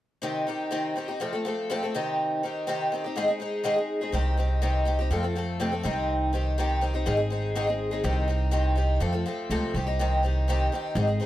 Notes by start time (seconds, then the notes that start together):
0.22 C3 D#3 C4 D#4 G4
0.47 D#3 C4 D#4 G4
0.71 C3 D#3 C4 D#4 G4
0.96 D#3 C4 D#4 G4
1.08 C4 D#4 G4
1.20 F2 C3 F3 A3 C4 A4
1.33 F3 A3 C4 A4
1.45 F3 A3 C4 A4
1.70 F2 C3 F3 A3 C4 A4
1.83 F3 A3 C4 A4
1.94 C3 D#3 C4 D#4 G4
2.43 D#3 C4 D#4 G4
2.67 C3 D#3 C4 D#4 G4
2.92 D#3 C4 D#4 G4
3.04 C4 D#4 G4
3.16 G#2 D#3 G#3 C4 D#4 G#4
3.28 G#3 C4 D#4 G#4
3.40 G#3 C4 D#4 G#4
3.64 G#2 D#3 G#3 C4 D#4 G#4
3.76 G#3 C4 D#4 G#4
4.01 G#3 C4 D#4 G#4
4.12 C2 C3 D#3 C4 D#4 G4
4.37 D#3 C4 D#4 G4
4.62 C3 D#3 C4 D#4 G4
4.85 D#3 C4 D#4 G4
4.99 C4 D#4 G4
5.11 F2 C3 F3 A3 C4 A4
5.23 F3 A3 C4 A4
5.36 F3 A3 C4 A4
5.60 F2 C3 F3 A3 C4 A4
5.72 F3 A3 C4 A4
5.83 C2 C3 D#3 C4 D#4 G4
6.33 D#3 C4 D#4 G4
6.58 C3 D#3 C4 D#4 G4
6.81 D#3 C4 D#4 G4
6.94 C4 D#4 G4
7.06 G#1 G#2 D#3 G#3 C4 D#4 G#4
7.17 G#3 C4 D#4 G#4
7.30 G#3 C4 D#4 G#4
7.55 G#2 D#3 G#3 C4 D#4 G#4
7.67 G#3 C4 D#4 G#4
7.91 G#3 C4 D#4 G#4
8.04 C2 C3 D#3 C4 D#4 G4
8.28 D#3 C4 D#4 G4
8.51 C3 D#3 C4 D#4 G4
8.76 D#3 C4 D#4 G4
9.00 F2 C3 F3 A3 C4 A4
9.13 F3 A3 C4 A4
9.26 F3 A3 C4 A4
9.50 C#2 F2 C3 F3 A3 C4 A4
9.74 C2 D#3 C4 D#4 G4
9.87 C4 D#4 G4
9.99 C3 D#3 C4 D#4 G4
10.23 D#3 C4 D#4 G4
10.48 C3 D#3 C4 D#4 G4
10.72 D#3 C4 D#4 G4
10.95 G#1 G#2 D#3 G#3 C4 D#4 G#4
11.07 G#3 C4 D#4 G#4
11.20 G#3 C4 D#4 G#4